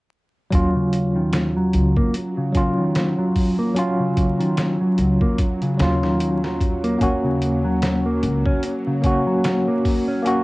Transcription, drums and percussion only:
0.52 kick, closed hi-hat
0.93 closed hi-hat
1.33 snare, closed hi-hat
1.74 closed hi-hat
1.97 kick
2.14 closed hi-hat
2.55 kick, closed hi-hat
2.95 snare, closed hi-hat
3.36 kick, open hi-hat
3.76 closed hi-hat
4.17 kick, closed hi-hat
4.40 closed hi-hat
4.57 snare, closed hi-hat
4.98 closed hi-hat
5.21 kick
5.38 kick, closed hi-hat
5.62 closed hi-hat
5.79 snare, closed hi-hat
6.03 snare
6.20 closed hi-hat
6.44 snare
6.60 kick, closed hi-hat
6.84 closed hi-hat
7.01 kick, closed hi-hat
7.42 closed hi-hat
7.82 snare, closed hi-hat
8.23 closed hi-hat
8.46 kick
8.63 closed hi-hat
9.04 kick, closed hi-hat
9.44 snare, closed hi-hat
9.85 kick, open hi-hat
10.26 closed hi-hat

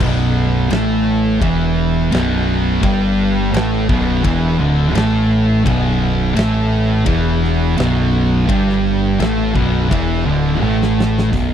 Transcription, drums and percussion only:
0.00 kick, crash
0.70 snare, ride bell
1.42 kick, ride bell
2.12 snare, ride bell
2.83 kick, ride bell
3.54 snare, ride bell
3.89 kick
4.24 kick, ride bell
4.95 snare, ride bell
5.66 kick, ride bell
6.36 snare, ride bell
7.06 kick, ride bell
7.44 snare
7.78 snare, ride bell
8.49 kick, ride bell
8.69 snare
9.20 snare, ride bell
9.55 kick
9.91 kick, ride bell
10.63 high tom
10.82 snare
11.00 snare
11.19 snare
11.33 kick, open hi-hat

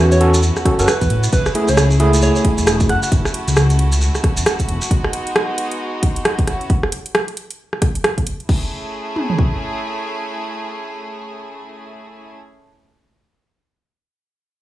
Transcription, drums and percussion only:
0.12 closed hi-hat, maracas
0.21 closed hi-hat
0.34 closed hi-hat, maracas
0.43 maracas
0.56 cross-stick, maracas
0.65 kick, cross-stick, closed hi-hat
0.79 closed hi-hat, maracas
0.88 cross-stick, closed hi-hat, maracas
1.01 kick, closed hi-hat, maracas
1.10 closed hi-hat
1.23 closed hi-hat, maracas
1.33 kick, closed hi-hat, maracas
1.46 cross-stick, maracas
1.55 closed hi-hat
1.68 closed hi-hat, maracas
1.77 cross-stick, closed hi-hat, maracas
1.91 maracas
2.00 closed hi-hat
2.13 closed hi-hat, maracas
2.22 maracas
2.36 maracas
2.45 kick, closed hi-hat
2.58 closed hi-hat, maracas
2.67 cross-stick, closed hi-hat, maracas
2.80 kick, closed hi-hat, maracas
2.89 cross-stick, closed hi-hat
3.03 closed hi-hat, maracas
3.12 kick, closed hi-hat, maracas
3.25 cross-stick, maracas
3.34 closed hi-hat
3.48 closed hi-hat, maracas
3.56 cross-stick, closed hi-hat, maracas
3.70 closed hi-hat, maracas
3.79 closed hi-hat
3.92 closed hi-hat, maracas
4.01 maracas
4.15 cross-stick, maracas
4.24 kick, cross-stick, closed hi-hat
4.37 closed hi-hat, maracas
4.46 cross-stick, closed hi-hat, maracas
4.59 kick, closed hi-hat, maracas
4.69 closed hi-hat
4.82 closed hi-hat, maracas
4.91 kick, closed hi-hat
5.04 cross-stick
5.13 closed hi-hat
5.27 closed hi-hat
5.36 cross-stick, closed hi-hat
5.58 closed hi-hat
5.71 closed hi-hat
6.03 kick, closed hi-hat
6.16 closed hi-hat
6.25 cross-stick, closed hi-hat
6.39 kick, closed hi-hat
6.47 cross-stick, closed hi-hat
6.61 closed hi-hat
6.70 kick, closed hi-hat
6.83 cross-stick
6.92 closed hi-hat
7.06 closed hi-hat
7.15 cross-stick, closed hi-hat
7.28 closed hi-hat
7.37 closed hi-hat
7.51 closed hi-hat
7.73 cross-stick
7.82 kick, cross-stick, closed hi-hat
7.95 closed hi-hat
8.04 cross-stick, closed hi-hat
8.18 kick, closed hi-hat
8.27 closed hi-hat
8.40 closed hi-hat
8.49 kick, crash
9.16 mid tom
9.30 floor tom
9.39 kick

